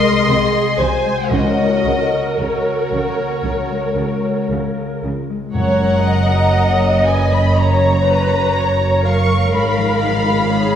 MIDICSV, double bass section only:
0, 0, Header, 1, 2, 480
1, 0, Start_track
1, 0, Key_signature, 6, "major"
1, 0, Tempo, 1029160
1, 612, Time_signature, 4, 2, 24, 8
1, 612, Tempo, 1060071
1, 2532, Tempo, 1006711
1, 3972, Tempo, 961538
1, 5061, End_track
2, 0, Start_track
2, 0, Title_t, "Double bass section"
2, 0, Program_c, 0, 48
2, 128, Note_on_c, 0, 36, 51
2, 165, Note_off_c, 0, 36, 0
2, 363, Note_on_c, 0, 36, 45
2, 400, Note_off_c, 0, 36, 0
2, 608, Note_on_c, 0, 37, 45
2, 645, Note_off_c, 0, 37, 0
2, 854, Note_on_c, 0, 37, 44
2, 891, Note_off_c, 0, 37, 0
2, 1095, Note_on_c, 0, 37, 40
2, 1131, Note_off_c, 0, 37, 0
2, 1336, Note_on_c, 0, 37, 42
2, 1372, Note_off_c, 0, 37, 0
2, 1571, Note_on_c, 0, 37, 42
2, 1608, Note_off_c, 0, 37, 0
2, 1806, Note_on_c, 0, 37, 38
2, 1842, Note_off_c, 0, 37, 0
2, 2051, Note_on_c, 0, 37, 39
2, 2087, Note_off_c, 0, 37, 0
2, 2297, Note_on_c, 0, 37, 38
2, 2333, Note_off_c, 0, 37, 0
2, 2532, Note_on_c, 0, 30, 44
2, 4434, Note_off_c, 0, 30, 0
2, 4446, Note_on_c, 0, 32, 50
2, 5061, Note_off_c, 0, 32, 0
2, 5061, End_track
0, 0, End_of_file